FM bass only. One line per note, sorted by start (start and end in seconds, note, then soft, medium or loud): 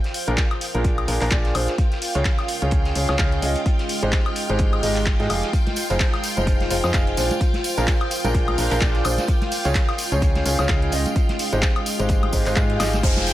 0.28 0.37 A#1 medium
0.75 1.06 A#1 loud
1.08 1.19 A#1 loud
1.21 1.29 A#1 loud
1.31 1.53 A#1 loud
1.55 1.68 A#1 medium
2.15 2.25 C#2 loud
2.62 2.94 C#2 loud
2.96 3.06 C#2 medium
3.09 3.17 C#2 loud
3.19 3.40 C#2 loud
3.42 3.55 C#2 loud
4.03 4.12 G#1 loud
4.50 4.81 G#1 loud
4.83 5.17 G#1 loud
5.20 5.28 G#2 medium
5.30 5.43 F1 medium
5.90 6.00 F1 loud
6.37 6.69 F1 loud
6.71 6.81 F1 medium
6.84 6.92 F2 loud
6.94 7.15 F1 loud
7.17 7.30 A#1 medium
7.78 7.87 A#1 loud
8.24 8.56 A#1 loud
8.58 8.69 A#1 loud
8.71 8.79 A#1 loud
8.81 9.03 A#1 loud
9.05 9.18 A#1 loud
9.65 9.75 C#2 loud
10.12 10.44 C#2 loud
10.46 10.56 C#2 loud
10.59 10.67 C#2 loud
10.69 10.90 C#2 loud
10.92 11.05 C#2 loud
11.53 11.63 G#1 loud
12.00 12.31 G#1 loud
12.33 12.44 G#1 loud
12.46 12.54 G#1 medium
12.56 12.78 G#2 loud
12.80 13.01 G#1 loud
13.03 13.33 F1 loud